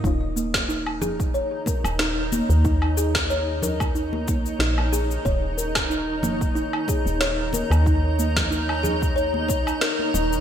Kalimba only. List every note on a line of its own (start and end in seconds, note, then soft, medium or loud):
0.04 0.14 D#4 medium
0.36 0.67 A#3 medium
0.69 0.86 D#4 medium
1.02 1.33 G#4 medium
1.34 1.44 C#5 medium
1.67 1.98 A#4 medium
2.00 2.10 D#4 medium
2.32 2.63 A#3 medium
2.65 2.81 D#4 loud
2.97 3.28 G#4 medium
3.30 3.40 C#5 medium
3.63 3.94 A#4 medium
3.95 4.05 D#4 medium
4.28 4.59 A#3 medium
4.60 4.77 D#4 medium
4.93 5.24 G#4 loud
5.25 5.35 C#5 medium
5.58 5.89 A#4 medium
5.90 6.00 D#4 medium
6.23 6.54 A#3 medium
6.55 6.72 D#4 medium
6.88 7.19 G#4 medium
7.21 7.31 C#5 medium
7.54 7.85 A#4 medium
7.86 7.96 D#4 medium
8.19 8.50 A#3 medium
8.51 8.68 D#4 medium
8.83 9.15 G#4 medium
9.16 9.26 C#5 medium
9.49 9.66 C#5 medium
9.81 9.98 A#4 medium
10.14 10.31 D#5 medium